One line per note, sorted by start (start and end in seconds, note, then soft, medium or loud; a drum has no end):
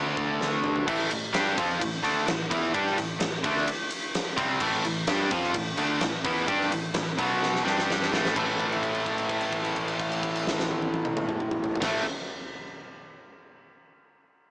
0.00 0.15 D2 medium
0.00 0.85 D3 medium
0.00 0.86 A3 medium
0.00 0.86 D4 medium
0.17 0.38 D2 medium
0.17 kick medium
0.41 0.62 D2 medium
0.41 snare medium
0.64 0.85 D2 loud
0.64 mid tom medium
0.76 floor tom medium
0.87 1.09 A1 medium
0.87 1.10 A2 loud
0.87 1.10 E3 loud
0.87 1.11 A3 loud
0.87 kick loud
0.87 crash loud
1.11 1.33 A1 medium
1.11 1.29 A2 medium
1.11 1.29 E3 medium
1.11 ride medium
1.33 1.56 G2 loud
1.33 1.56 G3 loud
1.33 1.56 D4 loud
1.33 1.57 G4 loud
1.33 snare loud
1.33 ride loud
1.57 1.79 F2 medium
1.57 1.80 F3 medium
1.57 1.80 C4 medium
1.57 1.81 F4 medium
1.57 kick loud
1.57 ride medium
1.80 2.03 A1 medium
1.80 1.99 A2 medium
1.80 1.99 E3 medium
1.80 kick loud
1.80 ride loud
2.03 2.26 D2 loud
2.03 2.26 D3 loud
2.03 2.26 A3 loud
2.03 2.26 D4 loud
2.03 ride medium
2.27 2.50 A1 medium
2.27 2.46 A2 medium
2.27 2.46 E3 medium
2.27 snare loud
2.27 ride medium
2.50 2.73 E2 loud
2.50 2.73 E3 medium
2.50 2.73 B3 loud
2.50 2.74 E4 loud
2.50 kick loud
2.50 ride medium
2.74 2.96 G2 loud
2.74 2.97 G3 loud
2.74 2.97 D4 loud
2.74 2.97 G4 loud
2.74 kick medium
2.74 ride medium
2.87 snare soft
2.97 3.19 A1 medium
2.97 3.16 A2 medium
2.97 3.16 E3 medium
2.97 ride medium
3.20 3.42 A1 medium
3.20 3.39 A2 medium
3.20 3.39 E3 medium
3.20 snare loud
3.20 ride loud
3.44 3.66 D2 medium
3.44 3.67 D3 medium
3.44 3.67 A3 loud
3.44 3.67 D4 loud
3.44 kick loud
3.44 ride medium
3.57 snare soft
3.68 ride loud
3.90 ride medium
4.15 snare loud
4.15 ride loud
4.37 4.59 C2 loud
4.37 4.60 C3 medium
4.37 4.60 G3 loud
4.37 4.60 C4 loud
4.37 kick loud
4.37 ride medium
4.60 4.83 A1 loud
4.60 4.83 A2 loud
4.60 4.83 E3 loud
4.60 4.84 A3 loud
4.60 kick loud
4.60 crash loud
4.73 snare soft
4.84 5.06 A1 medium
4.84 5.03 A2 medium
4.84 5.03 E3 medium
4.84 ride medium
5.07 5.29 G2 medium
5.07 5.30 G3 medium
5.07 5.31 D4 loud
5.07 5.31 G4 loud
5.07 snare loud
5.07 ride loud
5.31 5.53 F2 loud
5.31 5.54 F3 medium
5.31 5.54 C4 loud
5.31 5.54 F4 loud
5.31 kick loud
5.31 ride medium
5.44 snare soft
5.54 5.76 A1 medium
5.54 5.73 A2 medium
5.54 5.74 E3 medium
5.54 kick loud
5.54 ride loud
5.77 5.99 D2 loud
5.77 6.00 D3 loud
5.77 6.01 A3 loud
5.77 6.01 D4 loud
5.77 ride medium
6.01 6.23 A1 medium
6.01 6.20 A2 medium
6.01 6.20 E3 medium
6.01 snare loud
6.01 ride loud
6.24 6.46 E2 loud
6.24 6.47 E3 medium
6.24 6.47 B3 loud
6.24 6.48 E4 loud
6.24 kick loud
6.24 ride medium
6.47 6.70 G2 loud
6.47 6.70 G3 medium
6.47 6.71 D4 loud
6.47 6.71 G4 loud
6.47 kick loud
6.47 ride loud
6.61 snare soft
6.71 6.93 A1 medium
6.71 6.90 A2 medium
6.71 6.91 E3 medium
6.71 ride medium
6.94 7.17 A1 medium
6.94 7.13 A2 medium
6.94 7.14 E3 medium
6.94 snare loud
6.94 ride loud
7.18 7.62 B1 loud
7.18 7.64 B2 loud
7.18 7.64 F#3 medium
7.18 7.64 B3 medium
7.18 kick loud
7.18 ride medium
7.43 snare medium
7.55 snare medium
7.64 8.09 G2 medium
7.64 8.11 G3 medium
7.64 8.11 D4 loud
7.64 8.11 G4 loud
7.64 snare medium
7.79 snare medium
7.90 snare medium
8.02 snare medium
8.12 8.34 A1 loud
8.12 8.34 A2 loud
8.12 8.35 E3 medium
8.12 8.35 A3 loud
8.12 snare loud
8.25 snare loud
8.36 11.72 A1 loud
8.36 11.80 A2 loud
8.36 11.83 E3 loud
8.36 11.84 A3 loud
8.36 kick loud
8.36 crash medium
8.60 kick medium
8.60 crash soft
8.72 crash soft
8.83 kick medium
8.83 crash soft
8.94 crash soft
9.06 kick medium
9.06 crash soft
9.18 crash soft
9.29 kick medium
9.29 crash medium
9.41 crash medium
9.52 kick medium
9.52 crash soft
9.65 crash medium
9.76 kick medium
9.76 crash medium
9.88 crash medium
9.99 kick medium
9.99 crash medium
10.12 crash medium
10.23 kick medium
10.23 crash soft
10.35 crash medium
10.47 snare medium
10.59 snare medium
10.71 high tom medium
10.82 high tom medium
10.94 high tom loud
11.05 mid tom loud
11.17 mid tom loud
11.29 mid tom loud
11.40 mid tom medium
11.51 mid tom loud
11.64 floor tom loud
11.75 floor tom loud
11.81 12.01 A1 medium
11.81 12.02 A2 loud
11.81 12.03 E3 loud
11.81 kick loud
11.81 snare loud
11.81 crash loud
11.85 12.04 A3 loud